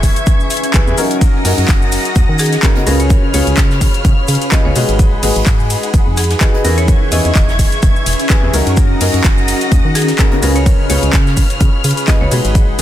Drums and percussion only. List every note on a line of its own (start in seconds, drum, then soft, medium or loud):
0.03 kick medium
0.03 open hi-hat loud
0.03 cabasa medium
0.03 shaker medium
0.16 closed hi-hat medium
0.16 cabasa soft
0.26 kick loud
0.26 closed hi-hat medium
0.26 cabasa soft
0.26 shaker medium
0.40 cabasa soft
0.50 open hi-hat loud
0.50 cabasa medium
0.50 shaker medium
0.57 closed hi-hat medium
0.64 closed hi-hat medium
0.64 cabasa soft
0.74 kick loud
0.74 clap loud
0.74 closed hi-hat medium
0.74 cabasa soft
0.74 shaker medium
0.87 cabasa soft
0.97 open hi-hat loud
0.97 cabasa medium
0.97 shaker medium
1.10 closed hi-hat soft
1.10 closed hi-hat medium
1.10 cabasa soft
1.21 kick loud
1.21 closed hi-hat medium
1.21 ride medium
1.21 cabasa soft
1.21 shaker medium
1.45 open hi-hat medium
1.45 open hi-hat loud
1.45 ride medium
1.45 cabasa medium
1.58 closed hi-hat medium
1.58 cabasa soft
1.68 kick loud
1.68 snare loud
1.68 clap loud
1.68 closed hi-hat medium
1.68 ride medium
1.68 cabasa soft
1.68 shaker loud
1.82 cabasa soft
1.92 open hi-hat loud
1.92 ride medium
1.92 cabasa medium
1.92 shaker medium
2.05 closed hi-hat medium
2.05 cabasa soft
2.16 kick loud
2.16 closed hi-hat medium
2.16 ride medium
2.16 cabasa soft
2.16 shaker medium
2.38 snare soft
2.38 open hi-hat loud
2.38 ride medium
2.38 cabasa medium
2.38 shaker medium
2.46 closed hi-hat medium
2.53 snare soft
2.53 closed hi-hat medium
2.53 cabasa soft
2.63 kick loud
2.63 snare loud
2.63 clap loud
2.63 closed hi-hat medium
2.63 ride medium
2.63 cabasa soft
2.63 shaker medium
2.75 closed hi-hat soft
2.87 open hi-hat loud
2.87 ride medium
2.87 cabasa medium
2.87 shaker medium
3.00 closed hi-hat medium
3.00 cabasa soft
3.10 kick loud
3.10 closed hi-hat medium
3.10 ride medium
3.10 cabasa soft
3.10 shaker medium
3.34 open hi-hat loud
3.34 ride medium
3.34 cabasa medium
3.34 shaker medium
3.47 closed hi-hat medium
3.47 cabasa soft
3.57 kick loud
3.57 snare loud
3.57 clap loud
3.57 closed hi-hat medium
3.57 ride medium
3.57 cabasa soft
3.57 shaker loud
3.71 snare medium
3.71 cabasa soft
3.81 kick medium
3.81 open hi-hat loud
3.81 ride medium
3.81 cabasa medium
3.81 shaker medium
3.94 closed hi-hat medium
3.94 cabasa soft
4.05 kick loud
4.05 closed hi-hat medium
4.05 ride medium
4.05 cabasa soft
4.05 shaker medium
4.27 open hi-hat loud
4.27 ride medium
4.27 cabasa medium
4.27 shaker medium
4.35 closed hi-hat medium
4.42 closed hi-hat medium
4.42 cabasa soft
4.52 kick loud
4.52 snare loud
4.52 clap loud
4.52 closed hi-hat medium
4.52 ride medium
4.52 cabasa soft
4.52 shaker medium
4.76 open hi-hat loud
4.76 ride medium
4.76 cabasa medium
4.76 shaker medium
4.89 closed hi-hat medium
4.89 closed hi-hat soft
4.89 cabasa soft
4.99 kick loud
4.99 closed hi-hat medium
4.99 ride medium
4.99 cabasa soft
4.99 shaker medium
5.23 open hi-hat medium
5.23 open hi-hat loud
5.23 ride medium
5.23 cabasa medium
5.36 closed hi-hat medium
5.36 cabasa soft
5.46 kick loud
5.46 snare loud
5.46 clap loud
5.46 closed hi-hat medium
5.46 ride medium
5.46 cabasa soft
5.46 shaker medium
5.60 cabasa soft
5.70 open hi-hat loud
5.70 ride medium
5.70 cabasa medium
5.70 shaker medium
5.83 closed hi-hat medium
5.83 cabasa soft
5.94 kick loud
5.94 closed hi-hat medium
5.94 ride medium
5.94 cabasa soft
5.94 shaker loud
6.17 snare soft
6.17 open hi-hat loud
6.17 ride medium
6.17 cabasa medium
6.17 shaker medium
6.24 closed hi-hat medium
6.30 snare soft
6.30 closed hi-hat medium
6.30 cabasa soft
6.41 kick loud
6.41 snare loud
6.41 clap loud
6.41 closed hi-hat medium
6.41 ride medium
6.41 cabasa soft
6.41 shaker medium
6.54 closed hi-hat soft
6.65 open hi-hat loud
6.65 ride medium
6.65 cabasa medium
6.65 shaker medium
6.78 closed hi-hat medium
6.78 cabasa soft
6.88 kick loud
6.88 closed hi-hat medium
6.88 ride medium
6.88 cabasa soft
6.88 shaker loud
7.12 open hi-hat loud
7.12 ride medium
7.12 cabasa medium
7.12 shaker medium
7.25 closed hi-hat soft
7.25 cabasa soft
7.35 kick loud
7.35 snare loud
7.35 clap loud
7.35 closed hi-hat medium
7.35 ride medium
7.35 cabasa soft
7.35 shaker medium
7.49 snare medium
7.49 cabasa soft
7.59 kick medium
7.59 open hi-hat loud
7.59 ride medium
7.59 cabasa medium
7.59 shaker medium
7.72 closed hi-hat medium
7.72 cabasa soft
7.82 kick loud
7.82 closed hi-hat medium
7.82 ride medium
7.82 cabasa soft
7.82 shaker medium
7.96 cabasa soft
8.06 open hi-hat loud
8.06 ride medium
8.06 cabasa medium
8.06 shaker medium
8.13 closed hi-hat medium
8.20 closed hi-hat soft
8.20 cabasa soft
8.30 kick loud
8.30 snare loud
8.30 clap loud
8.30 closed hi-hat medium
8.30 ride medium
8.30 cabasa soft
8.30 shaker loud
8.54 open hi-hat loud
8.54 ride medium
8.54 cabasa medium
8.54 shaker medium
8.67 closed hi-hat medium
8.67 closed hi-hat soft
8.67 cabasa soft
8.77 kick loud
8.77 closed hi-hat medium
8.77 ride medium
8.77 cabasa soft
8.77 shaker medium
9.01 open hi-hat medium
9.01 open hi-hat loud
9.01 ride medium
9.01 cabasa medium
9.14 closed hi-hat medium
9.14 cabasa soft
9.24 kick loud
9.24 snare loud
9.24 clap loud
9.24 closed hi-hat medium
9.24 ride medium
9.24 cabasa soft
9.24 shaker medium
9.38 cabasa soft
9.48 open hi-hat loud
9.48 ride medium
9.48 cabasa medium
9.48 shaker medium
9.61 closed hi-hat medium
9.61 cabasa soft
9.72 kick loud
9.72 closed hi-hat medium
9.72 ride medium
9.72 cabasa soft
9.72 shaker loud
9.95 snare soft
9.95 open hi-hat loud
9.95 ride medium
9.95 cabasa medium
9.95 shaker medium
10.02 closed hi-hat medium
10.08 snare soft
10.08 closed hi-hat soft
10.08 cabasa soft
10.18 kick loud
10.18 snare loud
10.18 clap loud
10.18 closed hi-hat medium
10.18 ride medium
10.18 cabasa soft
10.18 shaker medium
10.32 closed hi-hat soft
10.42 open hi-hat loud
10.42 ride medium
10.42 cabasa medium
10.42 shaker medium
10.56 closed hi-hat medium
10.56 cabasa soft
10.66 kick loud
10.66 closed hi-hat medium
10.66 ride medium
10.66 cabasa soft
10.66 shaker medium
10.90 open hi-hat loud
10.90 ride medium
10.90 cabasa medium
10.90 shaker medium
11.03 closed hi-hat medium
11.03 cabasa soft
11.13 kick loud
11.13 snare loud
11.13 clap loud
11.13 closed hi-hat medium
11.13 ride medium
11.13 cabasa soft
11.13 shaker medium
11.27 snare medium
11.27 cabasa soft
11.37 kick medium
11.37 open hi-hat loud
11.37 ride medium
11.37 cabasa medium
11.37 shaker medium
11.50 closed hi-hat medium
11.50 cabasa soft
11.61 kick loud
11.61 closed hi-hat medium
11.61 ride medium
11.61 cabasa soft
11.61 shaker loud
11.84 open hi-hat loud
11.84 ride medium
11.84 cabasa medium
11.84 shaker medium
11.91 closed hi-hat medium
11.97 closed hi-hat medium
11.97 cabasa soft
12.08 kick loud
12.08 snare loud
12.08 clap loud
12.08 closed hi-hat medium
12.08 ride medium
12.08 cabasa soft
12.08 shaker medium
12.31 open hi-hat loud
12.31 ride medium
12.31 cabasa medium
12.31 shaker medium
12.45 closed hi-hat medium
12.45 closed hi-hat soft
12.45 cabasa soft
12.55 kick loud
12.55 closed hi-hat medium
12.55 ride medium
12.55 cabasa soft
12.55 shaker medium